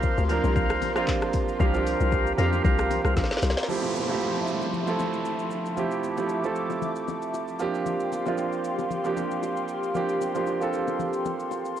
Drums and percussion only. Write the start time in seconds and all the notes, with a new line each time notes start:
0.03 kick, high bongo, shaker
0.18 shaker
0.29 open hi-hat, shaker
0.44 low bongo, shaker
0.56 kick, low conga, shaker
0.70 cross-stick, shaker
0.82 open hi-hat, low bongo, low conga, shaker
0.96 cross-stick, shaker
1.08 kick, clap, high bongo, shaker
1.22 cross-stick, shaker
1.33 kick, open hi-hat, shaker
1.48 shaker
1.60 kick, low conga, shaker
1.74 shaker
1.87 open hi-hat, shaker
2.00 shaker
2.12 kick, high bongo, shaker
2.27 shaker
2.38 open hi-hat, shaker
2.53 low bongo, shaker
2.64 kick, low conga, shaker
2.78 cross-stick, shaker
2.91 open hi-hat, low bongo, low conga, shaker
3.05 cross-stick, shaker
3.16 kick, snare, high bongo, shaker
3.24 snare
3.31 snare, shaker
3.37 snare
3.42 snare, open hi-hat, shaker
3.50 snare
3.57 snare, shaker
3.63 snare
3.69 low conga, shaker
3.83 shaker
3.95 low bongo, shaker
4.09 low bongo, shaker
4.21 high bongo, shaker
4.35 shaker
4.47 shaker
4.61 high bongo, low bongo, shaker
4.73 low conga, shaker
4.87 shaker
4.99 low bongo, low conga, shaker
5.13 shaker
5.25 high bongo, shaker
5.39 shaker
5.51 shaker
5.66 shaker
5.77 low conga, shaker
5.91 shaker
6.03 low bongo, shaker
6.17 low bongo, shaker
6.29 high bongo, shaker
6.44 shaker
6.56 shaker
6.70 high bongo, low bongo, shaker
6.82 low conga, shaker
6.96 shaker
7.08 low bongo, low conga, shaker
7.22 shaker
7.34 high bongo, shaker
7.48 shaker
7.59 shaker
7.75 shaker
7.86 low conga, shaker
8.00 shaker
8.12 low bongo, shaker
8.26 low bongo, shaker
8.38 high bongo, shaker
8.53 shaker
8.64 shaker
8.79 high bongo, low bongo, shaker
8.91 low conga, shaker
9.04 shaker
9.17 low bongo, low conga, shaker
9.31 shaker
9.42 high bongo, shaker
9.57 shaker
9.68 shaker
9.83 shaker
9.95 low conga, shaker
10.09 shaker
10.21 low bongo, shaker
10.35 low bongo, shaker
10.47 high bongo, shaker
10.61 shaker
10.73 shaker
10.88 high bongo, low bongo, shaker
10.99 low conga, shaker
11.13 shaker
11.25 low bongo, low conga, shaker
11.40 shaker
11.51 high bongo, shaker
11.65 shaker
11.77 shaker